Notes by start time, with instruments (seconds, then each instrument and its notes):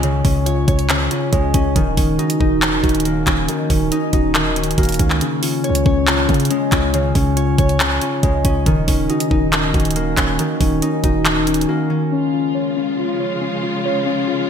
Already playing: 808-style bass C#2, harp G#3 C#4 C#5, synth keys C#4 F4
0.03 harp C#3, synth keys C#5, closed hi-hat
0.25 808-style bass C#2, synth keys C#4, harp C#4, kick, open hi-hat
0.46 synth keys F4, harp C#5, closed hi-hat
0.68 808-style bass C#2, harp C#5, synth keys C#5, kick, closed hi-hat
0.79 closed hi-hat
0.89 harp C#3, synth keys C#4, clap, closed hi-hat
1.11 harp C#4, synth keys F4, closed hi-hat
1.32 808-style bass C#2, harp G#3, synth keys C#5, kick, closed hi-hat
1.54 808-style bass C#2, harp C#4, synth keys C#4, kick, closed hi-hat
1.76 808-style bass D#1, harp D#3, synth keys D#3, kick, closed hi-hat
1.97 808-style bass D#1, harp C#4, synth keys C#4, kick, open hi-hat
2.19 harp D#4, synth keys F#4, closed hi-hat
2.30 closed hi-hat
2.40 808-style bass D#1, synth keys D#3, harp D#4, kick
2.62 harp D#3, synth keys C#4, clap, closed hi-hat
2.83 808-style bass D#1, harp C#4, synth keys F#4, kick, closed hi-hat
2.89 closed hi-hat
2.95 closed hi-hat
3.00 closed hi-hat
3.05 synth keys D#3, harp A#3, closed hi-hat
3.27 808-style bass D#1, synth keys C#4, harp C#4, kick, clap, closed hi-hat
3.48 harp D#3, synth keys F#4, closed hi-hat
3.70 808-style bass D#1, synth keys D#3, harp C#4, kick, open hi-hat
3.91 synth keys C#4, harp D#4, closed hi-hat
4.13 808-style bass D#1, harp D#4, synth keys F#4, kick, closed hi-hat
4.35 harp D#3, synth keys D#3, clap, closed hi-hat
4.56 harp C#4, synth keys C#4, closed hi-hat
4.63 closed hi-hat
4.71 closed hi-hat
4.78 808-style bass D#1, harp A#3, synth keys F#4, kick, closed hi-hat
4.83 closed hi-hat
4.85 closed hi-hat
4.89 closed hi-hat
4.92 closed hi-hat
4.94 closed hi-hat
4.99 808-style bass C#2, synth keys D#3, harp C#4, kick, closed hi-hat
5.10 clap
5.21 harp C#3, synth keys C#4, closed hi-hat
5.42 harp C#4, synth keys F4, open hi-hat
5.64 synth keys C#5, harp C#5, closed hi-hat
5.70 808-style bass C#2
5.75 closed hi-hat
5.86 808-style bass C#2, synth keys C#4, harp C#5, kick
6.07 harp C#3, synth keys F4, clap, closed hi-hat
6.29 808-style bass C#3, harp C#4, synth keys C#5, kick, closed hi-hat
6.34 closed hi-hat
6.40 closed hi-hat
6.45 closed hi-hat
6.50 harp G#3, synth keys C#4, closed hi-hat
6.72 808-style bass C#2, harp C#4, synth keys F4, kick, clap, closed hi-hat
6.94 harp C#3, synth keys C#5, closed hi-hat
7.15 808-style bass C#2, synth keys C#4, harp C#4, kick, open hi-hat
7.37 synth keys F4, harp C#5, closed hi-hat
7.58 808-style bass C#2, harp C#5, synth keys C#5, kick, closed hi-hat
7.69 closed hi-hat
7.80 harp C#3, synth keys C#4, clap, closed hi-hat
8.02 harp C#4, synth keys F4, closed hi-hat
8.23 808-style bass C#2, harp G#3, synth keys C#5, kick, closed hi-hat
8.44 808-style bass C#2, harp C#4, synth keys C#4, kick, closed hi-hat
8.66 808-style bass D#1, harp D#3, synth keys D#3, kick, closed hi-hat
8.88 808-style bass D#1, harp C#4, synth keys C#4, kick, open hi-hat
9.09 harp D#4, synth keys F#4, closed hi-hat
9.20 closed hi-hat
9.31 808-style bass D#1, synth keys D#3, harp D#4, kick
9.53 harp D#3, synth keys C#4, clap, closed hi-hat
9.74 808-style bass D#1, harp C#4, synth keys F#4, kick, closed hi-hat
9.80 closed hi-hat
9.85 closed hi-hat
9.91 closed hi-hat
9.96 synth keys D#3, harp A#3, closed hi-hat
10.17 808-style bass D#1, synth keys C#4, harp C#4, kick, clap, closed hi-hat
10.39 harp D#3, synth keys F#4, closed hi-hat
10.60 808-style bass D#1, synth keys D#3, harp C#4, kick, open hi-hat
10.82 synth keys C#4, harp D#4, closed hi-hat
11.04 808-style bass D#1, harp D#4, synth keys F#4, kick, closed hi-hat
11.25 harp D#3, synth keys D#3, clap, closed hi-hat
11.47 harp C#4, synth keys C#4, closed hi-hat
11.54 closed hi-hat
11.61 closed hi-hat
11.68 harp A#3, synth keys F#4
11.90 synth keys D#3, harp C#4
12.12 string section C#3 F3 G#3 F4, synth keys C#4
12.33 synth keys F4
12.55 synth keys C#5
12.77 synth keys C#4
12.98 synth keys F4
13.20 synth keys C#5
13.41 synth keys C#4
13.63 synth keys F4
13.85 synth keys C#5
14.06 synth keys C#4
14.28 synth keys F4